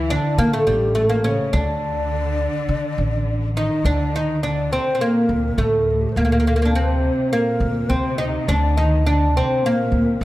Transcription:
0.00 0.16 D2 medium
0.00 0.14 E5 medium
0.10 0.40 D3 medium
0.10 0.40 D4 medium
0.10 0.42 D5 medium
0.38 0.54 A#2 medium
0.38 0.62 D3 medium
0.38 0.53 A#3 loud
0.38 0.56 A#4 medium
0.53 0.69 A2 medium
0.53 0.66 A3 medium
0.53 0.69 A4 medium
0.67 1.36 A1 medium
0.67 0.94 G3 medium
0.67 0.99 G4 medium
0.71 0.98 G2 medium
0.95 1.09 A3 medium
0.95 1.03 A4 medium
1.00 1.13 A2 medium
1.00 1.06 G4 medium
1.04 1.13 A4 medium
1.09 1.24 A#3 medium
1.09 1.29 A#4 medium
1.14 1.27 A#2 medium
1.24 1.55 C#3 medium
1.24 1.55 C#4 medium
1.24 1.56 C#5 medium
1.53 2.46 D2 medium
1.53 3.58 D3 medium
1.53 3.52 D4 medium
1.57 3.30 D5 medium
2.69 2.92 D3 medium
2.98 3.67 A1 medium
3.56 3.83 D#3 medium
3.56 3.85 D#4 medium
3.56 3.88 D#5 medium
3.84 4.77 D2 medium
3.84 4.15 D3 medium
3.84 4.15 D4 medium
3.84 4.16 D5 medium
4.13 4.43 D#3 medium
4.13 4.43 D#4 medium
4.13 4.44 D#5 medium
4.43 4.70 D3 medium
4.43 4.72 D4 medium
4.43 4.74 D5 medium
4.72 5.01 C3 medium
4.72 4.94 C4 medium
4.72 5.02 C5 medium
4.95 5.01 C4 medium
5.01 5.59 A#2 medium
5.01 5.58 A#3 medium
5.01 5.62 A#4 medium
5.29 5.52 D2 medium
5.57 6.04 D2 medium
5.57 6.16 A2 medium
5.57 6.17 A3 medium
5.57 5.83 A4 medium
5.82 5.92 A#4 medium
5.91 6.03 A4 medium
6.01 6.11 G4 medium
6.09 6.13 A4 medium
6.09 6.17 C5 medium
6.16 7.08 D2 medium
6.16 6.70 A#2 medium
6.16 6.24 A#3 medium
6.16 6.78 A#4 medium
6.25 6.31 A#3 medium
6.32 6.39 A#3 medium
6.40 6.46 A#3 medium
6.47 6.55 A#3 medium
6.56 6.61 A#3 medium
6.62 6.70 A#3 medium
6.62 6.73 D4 medium
6.74 7.32 C3 medium
6.74 7.29 C4 medium
6.74 7.33 C5 medium
7.30 7.89 A#2 medium
7.30 7.92 A#3 medium
7.34 7.91 A#4 medium
7.60 7.83 D2 medium
7.89 8.36 D2 medium
7.89 8.48 C3 medium
7.89 8.18 C4 medium
7.89 8.22 C5 medium
8.18 8.48 D#4 medium
8.18 8.49 D#5 medium
8.46 9.40 D2 medium
8.46 8.76 D3 medium
8.46 8.77 D4 medium
8.46 8.78 D5 medium
8.77 9.05 D#3 medium
8.77 9.06 D#4 medium
8.77 9.07 D#5 medium
9.04 9.31 D3 medium
9.04 9.36 D4 medium
9.04 9.38 D5 medium
9.33 9.60 C3 medium
9.33 9.65 C4 medium
9.64 10.21 A#2 medium
9.64 10.22 A#3 medium
9.64 10.23 A#4 medium
9.92 10.15 D2 medium

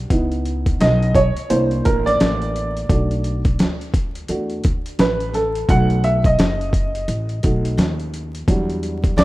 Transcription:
0.10 0.77 C#2 medium
0.10 1.11 B3 medium
0.10 1.11 D#4 medium
0.10 1.12 E4 medium
0.10 kick medium
0.10 closed hi-hat medium
0.32 closed hi-hat soft
0.45 closed hi-hat medium
0.66 kick medium
0.66 closed hi-hat medium
0.80 1.34 B1 loud
0.80 1.17 D#5 loud
0.80 snare loud
0.80 closed hi-hat medium
1.02 closed hi-hat soft
1.15 1.51 C#5 loud
1.15 kick medium
1.15 closed hi-hat medium
1.36 muted upright bass stroke soft
1.36 closed hi-hat medium
1.50 1.83 C2 loud
1.50 2.86 A#3 medium
1.50 2.86 D4 soft
1.50 2.86 E4 medium
1.50 1.86 C5 medium
1.50 closed hi-hat loud
1.71 closed hi-hat soft
1.85 2.19 A1 medium
1.85 2.07 A#4 medium
1.85 kick medium
1.85 closed hi-hat medium
2.06 3.76 D5 loud
2.06 snare soft
2.06 closed hi-hat medium
2.20 2.86 A1 medium
2.20 snare loud
2.20 closed hi-hat medium
2.42 closed hi-hat soft
2.56 closed hi-hat medium
2.77 closed hi-hat medium
2.89 3.56 B1 loud
2.89 3.39 A3 medium
2.89 3.39 D4 medium
2.89 3.39 F#4 medium
2.89 kick loud
2.89 closed hi-hat medium
3.11 closed hi-hat soft
3.24 closed hi-hat medium
3.45 kick medium
3.45 closed hi-hat soft
3.59 4.26 D2 medium
3.59 snare loud
3.59 closed hi-hat medium
3.81 closed hi-hat soft
3.94 kick medium
3.94 closed hi-hat medium
4.15 closed hi-hat medium
4.28 4.62 E2 loud
4.28 4.61 A3 soft
4.28 4.61 D4 soft
4.28 4.61 F#4 medium
4.28 closed hi-hat medium
4.50 closed hi-hat soft
4.64 4.98 D2 medium
4.64 kick loud
4.64 closed hi-hat medium
4.86 closed hi-hat medium
4.99 5.65 A1 medium
4.99 5.32 B4 medium
4.99 snare loud
4.99 closed hi-hat medium
5.20 closed hi-hat soft
5.34 5.70 A4 medium
5.34 snare soft
5.34 closed hi-hat medium
5.55 closed hi-hat medium
5.69 6.35 B1 loud
5.69 6.18 A3 medium
5.69 6.18 D#4 soft
5.69 6.18 F#4 medium
5.69 6.05 F#5 loud
5.69 kick loud
5.69 closed hi-hat medium
5.90 closed hi-hat soft
6.04 6.24 E5 loud
6.04 closed hi-hat medium
6.24 7.96 D#5 loud
6.24 kick medium
6.24 closed hi-hat medium
6.39 7.05 F#1 medium
6.39 snare loud
6.39 closed hi-hat medium
6.61 closed hi-hat soft
6.73 kick medium
6.73 closed hi-hat medium
6.95 closed hi-hat medium
7.08 7.41 A1 loud
7.08 closed hi-hat medium
7.29 closed hi-hat soft
7.43 7.77 B1 medium
7.43 7.74 A3 medium
7.43 7.75 D#4 soft
7.43 7.75 F#4 medium
7.43 kick loud
7.43 closed hi-hat medium
7.65 closed hi-hat medium
7.77 8.44 D#2 loud
7.77 snare loud
7.77 closed hi-hat medium
8.00 closed hi-hat soft
8.14 closed hi-hat medium
8.35 closed hi-hat medium
8.48 9.14 E2 loud
8.48 9.24 F#3 medium
8.48 9.24 G3 medium
8.48 9.24 D4 soft
8.48 kick loud
8.48 closed hi-hat medium
8.70 closed hi-hat soft
8.83 closed hi-hat medium
9.04 kick medium
9.04 closed hi-hat medium
9.17 9.24 D2 loud
9.17 9.24 D5 loud
9.17 snare loud
9.17 closed hi-hat medium

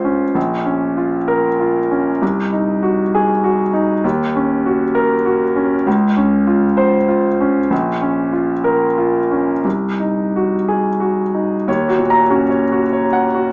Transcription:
0.00 0.31 C#2 soft
0.00 0.04 C#4 soft
0.00 0.38 F4 soft
0.00 0.38 C5 soft
0.04 0.35 C#4 soft
0.35 2.17 A#1 soft
0.65 1.15 C#4 soft
0.97 1.47 F4 soft
1.28 1.78 A#4 soft
1.59 2.09 F4 soft
1.91 2.22 C#4 soft
2.22 4.00 C2 soft
2.52 3.01 D#4 soft
2.83 3.31 F#4 soft
3.15 3.62 G#4 soft
3.44 3.92 F#4 soft
3.73 4.04 D#4 soft
4.04 5.82 D#2 soft
4.36 4.83 C#4 soft
4.66 5.14 F#4 soft
4.95 5.44 A#4 medium
5.25 5.74 F#4 soft
5.56 5.86 C#4 soft
5.86 7.67 C#2 soft
6.17 6.66 C#4 soft
6.47 6.97 F4 soft
6.77 7.27 C5 medium
7.08 7.58 F4 soft
7.40 7.71 C#4 soft
7.70 9.60 A#1 soft
8.01 8.51 C#4 soft
8.32 8.84 F4 soft
8.64 9.17 A#4 soft
8.98 9.51 F4 soft
9.31 9.65 C#4 soft
9.65 11.63 C2 soft
10.00 10.55 D#4 soft
10.36 10.89 F#4 soft
10.68 11.21 G#4 soft
11.00 11.54 F#4 soft
11.34 11.67 D#4 soft
11.68 13.50 D#2 soft
11.68 12.01 C#5 soft
11.88 12.22 F#4 soft
11.99 12.48 A#2 soft
12.10 12.43 A#5 soft
12.30 12.80 C#4 soft
12.30 12.63 F#4 soft
12.50 12.83 C#5 soft
12.72 13.05 F#4 soft
12.93 13.25 C#5 soft
13.13 13.46 F#5 soft
13.34 13.52 F#4 soft

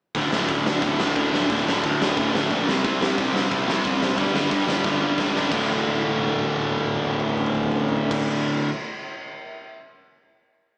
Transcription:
0.15 0.29 D1 medium
0.15 0.33 D2 medium
0.15 0.32 A2 loud
0.15 0.33 D3 loud
0.15 kick loud
0.15 open hi-hat medium
0.32 0.46 D1 medium
0.32 0.49 D2 medium
0.32 0.49 A2 medium
0.32 0.50 D3 medium
0.32 snare loud
0.49 0.63 D1 medium
0.49 0.67 D2 medium
0.49 0.66 A2 medium
0.49 0.65 D3 medium
0.49 kick loud
0.49 open hi-hat medium
0.65 0.79 D1 medium
0.65 0.82 D2 medium
0.65 0.83 A2 medium
0.65 0.83 D3 medium
0.65 snare loud
0.82 0.96 D1 medium
0.82 1.00 D2 medium
0.82 1.00 A2 medium
0.82 0.99 D3 medium
0.82 kick loud
0.82 open hi-hat medium
0.99 1.13 D1 medium
0.99 1.17 D2 medium
0.99 1.17 A2 medium
0.99 1.17 D3 medium
0.99 snare loud
1.16 1.44 D1 medium
1.16 1.33 D2 medium
1.16 1.33 A2 medium
1.16 1.32 D3 medium
1.16 kick loud
1.16 open hi-hat soft
1.33 1.50 D2 medium
1.33 1.51 A2 medium
1.33 1.51 D3 medium
1.33 snare medium
1.50 1.64 D1 loud
1.50 1.67 D2 medium
1.50 1.67 A2 loud
1.50 1.66 D3 loud
1.50 kick loud
1.50 open hi-hat medium
1.66 1.80 D1 medium
1.66 1.83 D2 medium
1.66 1.84 A2 medium
1.66 1.85 D3 medium
1.66 snare loud
1.83 1.97 D2 medium
1.83 2.01 D2 medium
1.83 2.01 A2 medium
1.83 2.00 D3 medium
1.83 kick loud
1.83 open hi-hat medium
2.00 2.14 D1 medium
2.00 2.16 D2 medium
2.00 2.17 A2 medium
2.00 2.18 D3 loud
2.00 snare loud
2.17 2.45 D1 medium
2.17 2.34 D2 medium
2.17 2.33 A2 medium
2.17 2.33 D3 medium
2.17 kick loud
2.17 open hi-hat medium
2.34 2.50 D2 medium
2.34 2.50 A2 medium
2.34 2.51 D3 loud
2.34 snare loud
2.50 2.65 A#1 medium
2.50 2.66 D2 medium
2.50 2.67 A2 medium
2.50 2.67 D3 medium
2.50 kick medium
2.50 open hi-hat soft
2.67 2.81 C2 medium
2.67 2.85 C3 medium
2.67 2.85 G3 loud
2.67 2.84 C4 medium
2.67 snare loud
2.84 2.98 C2 loud
2.84 3.00 C3 medium
2.84 3.01 G3 medium
2.84 3.01 C4 loud
2.84 kick loud
2.84 open hi-hat medium
3.00 3.14 C2 medium
3.00 3.18 C3 medium
3.00 3.18 G3 medium
3.00 3.17 C4 medium
3.00 snare loud
3.18 3.32 C2 medium
3.18 3.34 C3 medium
3.18 3.35 G3 medium
3.18 3.34 C4 medium
3.18 kick loud
3.18 open hi-hat medium
3.33 3.47 C2 medium
3.33 3.51 C3 loud
3.33 3.51 G3 medium
3.33 3.50 C4 loud
3.33 snare loud
3.51 3.65 C2 medium
3.51 3.67 C3 medium
3.51 3.67 G3 loud
3.51 3.68 C4 medium
3.51 kick loud
3.51 open hi-hat medium
3.68 3.82 C2 medium
3.68 3.85 C3 medium
3.68 3.84 G3 medium
3.68 3.84 C4 loud
3.68 snare loud
3.85 4.13 F1 medium
3.85 4.00 C3 medium
3.85 4.01 G3 medium
3.85 4.01 C4 medium
3.85 kick loud
3.85 open hi-hat medium
4.02 4.17 C3 medium
4.02 4.17 G3 medium
4.02 4.18 C4 medium
4.02 snare loud
4.18 4.32 G1 loud
4.18 4.35 G2 loud
4.18 4.35 D3 loud
4.18 4.34 G3 loud
4.18 kick loud
4.18 open hi-hat medium
4.33 4.48 G1 medium
4.33 4.49 G2 medium
4.33 4.50 D3 medium
4.33 4.50 G3 medium
4.33 snare loud
4.51 4.67 G2 medium
4.51 4.65 G2 medium
4.51 4.67 D3 medium
4.51 4.66 G3 loud
4.51 kick loud
4.51 open hi-hat medium
4.67 4.81 G1 medium
4.67 4.83 G2 medium
4.67 4.84 D3 medium
4.67 4.84 G3 medium
4.67 snare loud
4.84 5.12 G1 medium
4.84 5.01 G2 medium
4.84 5.01 D3 medium
4.84 5.00 G3 medium
4.84 kick loud
4.84 snare medium
5.01 5.17 G2 medium
5.01 5.17 D3 medium
5.01 5.18 G3 medium
5.17 5.46 C#2 medium
5.17 5.35 G2 medium
5.17 5.34 D3 medium
5.17 5.34 G3 medium
5.17 kick loud
5.17 snare medium
5.35 5.50 G2 medium
5.35 5.51 D3 medium
5.35 5.51 G3 medium
5.35 snare medium
5.50 8.14 D1 medium
5.50 8.69 D2 medium
5.50 8.69 A2 medium
5.50 8.69 D3 medium
5.50 8.69 A3 loud
5.50 kick loud
5.50 crash medium
5.55 8.69 F4 medium
5.69 high tom soft
5.77 high tom soft
5.85 high tom soft
5.94 high tom soft
6.02 high tom soft
6.10 high tom medium
6.19 high tom medium
6.28 mid tom medium
6.36 mid tom medium
6.44 mid tom medium
6.52 mid tom medium
6.62 mid tom medium
6.69 mid tom medium
6.78 mid tom medium
6.87 mid tom medium
6.96 mid tom medium
7.04 mid tom medium
7.13 mid tom medium
7.20 mid tom medium
7.29 mid tom medium
7.37 mid tom medium
7.46 floor tom medium
7.55 floor tom medium
7.63 floor tom medium
7.72 floor tom medium
7.80 floor tom medium
7.89 floor tom medium
7.97 floor tom medium
8.11 kick loud
8.11 crash loud

